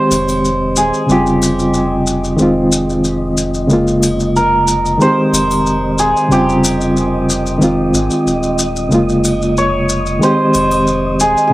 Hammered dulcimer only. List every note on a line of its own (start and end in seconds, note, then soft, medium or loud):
0.00 2.44 C5 loud
0.77 1.17 G#4 medium
1.11 4.25 G4 medium
4.36 7.19 A#4 medium
5.02 7.66 C5 loud
5.99 6.38 G#4 loud
6.32 9.46 G4 loud
9.58 10.29 C#5 loud
10.23 11.53 C5 loud
11.21 11.47 G#4 medium
11.47 11.53 G#4 medium